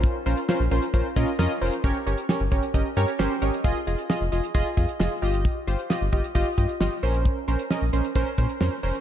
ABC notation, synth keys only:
X:1
M:4/4
L:1/8
Q:1/4=133
K:Bbdor
V:1 name="Synth keys"
[DFBc] [DFBc] [DFBc] [DFBc] [DFBc] [DFBe] [DFBe] [DFBc] | [DGBd] [DGBd] [DGBd] [DGBd] [DGBe] [DGBdb] [DGBcg] [DGBde] | [FAe] [FAe] [FAe] [FAe] [FAe] [FAe] [FAe] [FGe]- | [FGe] [FGc] [FGe] [FGe] [FGe] [FGe] [FGe] [DBc]- |
[DBc] [DBc] [DBe] [DBc] [DBc] [DBc] [DBc] [DBc] |]